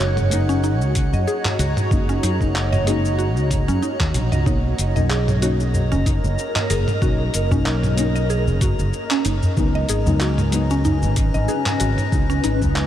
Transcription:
Already playing: fretless electric bass F#1, synth stab G#3 A#3 C#4 D#4, ambient pad D#4 F#4 C#5 D#5 F#5, synth texture F#5
0.00 ambient pad A#5, clap, shaker
0.17 mid tom, shaker
0.30 synth stab G#3 A#3 C#4, closed hi-hat, shaker
0.34 synth stab D#4
0.49 synth pluck C#4, shaker
0.64 synth pluck D#4, shaker
0.81 fretless electric bass C#2, shaker
0.95 kick, closed hi-hat, shaker
1.13 fretless electric bass F#2, synth pluck D#5, shaker
1.28 synth pluck G#4, shaker
1.45 clap, mid tom, shaker
1.59 fretless electric bass C#2, synth pluck F#4, closed hi-hat, shaker
1.77 mid tom, shaker
1.90 fretless electric bass F#1, synth stab G#3 A#3 C#4 D#4, kick, shaker
2.09 synth pluck C#4, shaker
2.23 fretless electric bass F#2, synth pluck D#4, closed hi-hat, shaker
2.40 fretless electric bass F#1, synth stab G#3 A#3 C#4 D#4, kick, shaker
2.56 clap, shaker
2.73 synth pluck D#5, mid tom, shaker
2.85 synth stab G#3 A#3 C#4, synth pluck G#4, closed hi-hat, shaker
2.89 synth stab D#4
3.05 shaker
3.19 synth pluck F#4, shaker
3.37 fretless electric bass C#2, shaker
3.51 kick, closed hi-hat, mid tom, shaker
3.68 fretless electric bass F#2, synth pluck C#4, shaker
3.83 synth pluck D#4, shaker
4.00 fretless electric bass D#2, kick, clap, high tom, shaker
4.14 fretless electric bass A#1, closed hi-hat, mid tom, shaker
4.32 fretless electric bass C#2, synth pluck D#5, mid tom, shaker
4.45 fretless electric bass B1, synth stab F#3 A#3 C#4 D#4, synth pluck D#4, synth texture A#5, kick, shaker
4.79 fretless electric bass F#1, ambient pad A#4, closed hi-hat, shaker
4.95 fretless electric bass B1, synth stab F#3 A#3 C#4 D#4, synth pluck D#5, udu, shaker
5.10 synth pluck G#4, clap, shaker
5.28 mid tom, shaker
5.40 synth stab F#3 A#3 C#4 D#4, synth pluck F#4, closed hi-hat, shaker
5.60 shaker
5.74 udu, shaker
5.92 fretless electric bass F#1, synth pluck C#4, shaker
6.06 synth pluck D#4, kick, closed hi-hat, shaker
6.24 fretless electric bass F#1, shaker
6.38 shaker
6.56 synth pluck D#5, clap, mid tom, shaker
6.70 fretless electric bass F#1, synth pluck G#4, closed hi-hat, shaker
6.88 mid tom, shaker
7.01 fretless electric bass B1, synth stab F#3 A#3 C#4 D#4, synth pluck F#4, kick, shaker
7.34 fretless electric bass F#1, closed hi-hat, shaker
7.51 fretless electric bass B1, synth stab F#3 A#3 C#4 D#4, synth pluck C#4, kick, udu, shaker
7.66 synth pluck D#4, clap, shaker
7.83 mid tom, shaker
7.96 synth stab F#3 A#3 C#4, closed hi-hat, shaker
8.00 synth stab D#4
8.16 synth pluck D#5, shaker
8.30 synth pluck G#4, shaker
8.47 fretless electric bass F#1, shaker
8.61 synth pluck F#4, kick, closed hi-hat, mid tom, shaker
8.79 fretless electric bass F#1, shaker
8.93 shaker
9.10 synth pluck C#4, clap, shaker
9.25 fretless electric bass F#1, synth pluck D#4, closed hi-hat, shaker
9.43 udu, shaker
9.56 fretless electric bass C#2, synth stab F#3 G#3 B3 D#4, ambient pad C#4, kick, shaker
9.75 ambient pad B4, synth pluck D#5
9.89 fretless electric bass G#1, synth pluck G#4, closed hi-hat, shaker
10.06 fretless electric bass C#2, synth stab F#3 G#3 B3 D#4, udu, shaker
10.20 synth pluck F#4, clap, shaker
10.38 mid tom, shaker
10.51 synth stab F#3 G#3 B3 D#4, closed hi-hat, shaker
10.70 synth pluck C#4, shaker
10.85 synth pluck D#4, udu, shaker
11.02 fretless electric bass G#1, shaker
11.16 kick, closed hi-hat, shaker
11.34 fretless electric bass G#1, synth pluck D#5, shaker
11.48 synth pluck G#4, shaker
11.66 clap, mid tom, shaker
11.80 fretless electric bass G#1, synth pluck F#4, closed hi-hat, shaker
11.98 mid tom, shaker
12.12 fretless electric bass C#2, synth stab F#3 G#3 B3 D#4, kick, shaker
12.30 synth pluck C#4, shaker
12.44 fretless electric bass G#1, synth pluck D#4, closed hi-hat, shaker
12.61 fretless electric bass C#2, synth stab F#3 G#3 B3 D#4, kick, udu, shaker
12.76 clap, shaker

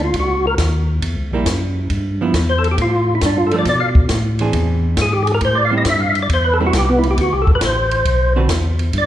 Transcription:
Already playing: tonewheel organ D2
0.04 tonewheel organ F4
0.14 tonewheel organ C#2, kick, ride
0.20 tonewheel organ F#4
0.47 tonewheel organ A#4
0.58 tonewheel organ D#2, kick, snare, hi-hat pedal, ride
1.02 tonewheel organ E2, kick, ride
1.16 tonewheel organ C#2
1.31 tonewheel organ A#1, hollow-body jazz guitar G3 A#3 E4
1.46 tonewheel organ F#2, kick, snare, hi-hat pedal, ride
1.90 tonewheel organ G2, kick, ride
2.21 hollow-body jazz guitar F3 B3 E4
2.34 tonewheel organ E2, kick, snare, hi-hat pedal, ride
2.49 tonewheel organ C5
2.59 tonewheel organ A4
2.64 ride
2.71 tonewheel organ G4
2.78 tonewheel organ A2, kick, ride
2.82 tonewheel organ F4
3.15 tonewheel organ E4
3.21 tonewheel organ G2, kick, snare, hi-hat pedal, ride
3.25 tonewheel organ D4
3.38 tonewheel organ F4
3.47 tonewheel organ A4
3.51 hollow-body jazz guitar F3 A3 D4, ride
3.59 tonewheel organ D5
3.65 tonewheel organ B2 D5, kick, snare, ride
3.80 tonewheel organ F5
3.95 kick
4.09 tonewheel organ A2, kick, snare, hi-hat pedal, ride
4.39 hollow-body jazz guitar E3 C4 D4 G#4, ride
4.53 tonewheel organ E2, kick, ride
4.97 tonewheel organ G#2, kick, snare, hi-hat pedal, ride
5.02 tonewheel organ G#4
5.13 tonewheel organ G4
5.23 tonewheel organ G#4
5.27 ride
5.34 tonewheel organ A#4
5.41 tonewheel organ A2, kick, ride
5.45 tonewheel organ C5
5.55 tonewheel organ D5
5.65 tonewheel organ F5
5.71 hollow-body jazz guitar G3 C4 E4
5.78 tonewheel organ D#5
5.85 tonewheel organ G2, kick, snare, hi-hat pedal, ride
5.89 tonewheel organ E5
6.00 tonewheel organ F5
6.09 tonewheel organ E5
6.15 ride
6.22 tonewheel organ D5
6.29 tonewheel organ E2, kick, ride
6.34 tonewheel organ C5
6.44 tonewheel organ B4
6.54 tonewheel organ A4
6.60 hollow-body jazz guitar G3 C4 E4
6.67 tonewheel organ F#4
6.73 tonewheel organ C2, kick, snare, hi-hat pedal, ride
6.77 tonewheel organ G4
6.89 tonewheel organ B3
6.99 tonewheel organ E4
7.03 ride
7.11 tonewheel organ G4
7.17 tonewheel organ D2 F#4, kick, ride
7.33 tonewheel organ C2 G4
7.42 tonewheel organ A4
7.47 tonewheel organ A1, kick
7.55 tonewheel organ B4
7.61 tonewheel organ A1, kick, snare, hi-hat pedal, ride
7.65 tonewheel organ C5
7.91 ride
8.05 tonewheel organ B1, kick, ride
8.36 hollow-body jazz guitar D3 C4 F#4 B4
8.49 tonewheel organ E2, kick, snare, hi-hat pedal, ride
8.79 ride
8.93 tonewheel organ G2, kick, ride
8.98 tonewheel organ D5

